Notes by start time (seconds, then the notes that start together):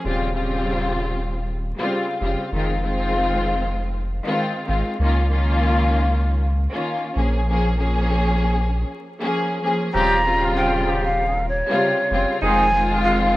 0.04 D#1 C#3 G3 C4 F4
0.33 C#3 G3 C4 F4
1.77 C#3 G3 C4 F4
2.20 F1 C#3 G3 C4 F4
2.52 F1 D#3 G#3 C4 F4
2.82 D#3 G#3 C4 F4
4.24 D#3 G#3 C4 F4
4.66 G#1 D#3 G#3 C4 F4
4.99 C#2 D#3 A#3 C#4 F4
5.28 D#3 A#3 C#4 F4
6.71 D#3 A#3 C#4 F4
7.14 A#1 F3 A#3 C#4 G#4
7.47 F3 A#3 C#4 G#4
7.76 F3 A#3 C#4 G#4
9.19 F3 A#3 C#4 G#4
9.62 F3 A#3 C#4 G#4
9.93 D#1 C#3 G3 C4 F4 G4 A#5
10.23 C#3 G3 C4 F4
10.41 C#3 C4 F4
10.56 C#3 C4 F4 G5
10.86 C#3 C4 G4
11.05 F5
11.49 C#5
11.66 C3 C#3 G3 F4
12.10 F1 C#3 G3 C4 F4
12.42 F1 D#3 F3 G#3 C4 D#4 F4 G#4 G#5
12.71 D#3 G#3 C4 F4
12.90 C3 G#3 F4
13.03 C3 G#3 F4 F5